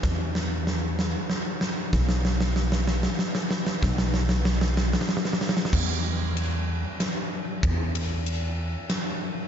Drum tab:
CC |------------------------|------------------------|------------------------|x-----------------------|
RD |------------------------|------------------------|------------------------|--------x-------x-------|
SD |o---o---o---o---o---o---|o-o-o-o-o-o-o-o-o-o-o-o-|o-o-o-o-o-o-o-oooooooooo|----------------o-------|
BD |o-----------------------|o-----------------------|o-----------------------|o-----------------------|

CC |------------------------|
RD |x---x---x-------x-------|
SD |----------------o-------|
BD |o-----------------------|